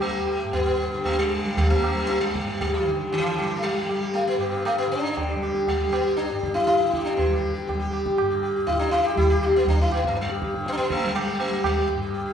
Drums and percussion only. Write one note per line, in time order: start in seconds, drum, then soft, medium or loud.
0.01 tabla na medium
0.27 tabla na medium
0.53 tabla tin medium
0.53 tabla ge medium
1.05 tabla tin medium
1.05 tabla ge medium
1.57 tabla tin medium
1.57 tabla ge medium
1.84 tabla na medium
2.10 tabla te medium
2.22 tabla te medium
2.35 tabla ke medium
2.48 tabla te medium
2.61 tabla tin medium
2.61 tabla ge medium
3.12 tabla tin medium
3.38 tabla na medium
3.63 tabla tin medium
3.89 tabla na medium
4.15 tabla tin medium
4.41 tabla na medium
4.66 tabla na medium
5.17 tabla tin medium
5.17 tabla ge medium
5.43 tabla na medium
5.55 tabla ke medium
5.68 tabla tin medium
5.68 tabla ge medium
5.93 tabla na medium
6.18 tabla te medium
6.30 tabla te medium
6.43 tabla ke medium
6.55 tabla te medium
6.68 tabla te medium
6.80 tabla te medium
6.94 tabla ke medium
7.06 tabla te medium
7.18 tabla tin loud
7.18 tabla ge loud
7.69 tabla tin medium
7.69 tabla ge medium
7.93 tabla na medium
8.06 tabla ke medium
8.18 tabla na medium
8.43 tabla na medium
8.68 tabla tin medium
8.68 tabla ge medium
8.93 tabla na medium
9.17 tabla tin medium
9.17 tabla ge medium
9.42 tabla na medium
9.67 tabla tin medium
9.67 tabla ge medium
9.92 tabla na medium
10.05 tabla ke medium
10.17 tabla te medium
10.29 tabla te medium
10.42 tabla ke medium
10.54 tabla te medium
10.66 tabla te medium
10.90 tabla ke medium
11.16 tabla na medium
11.40 tabla na medium
11.64 tabla na loud
11.64 tabla ge loud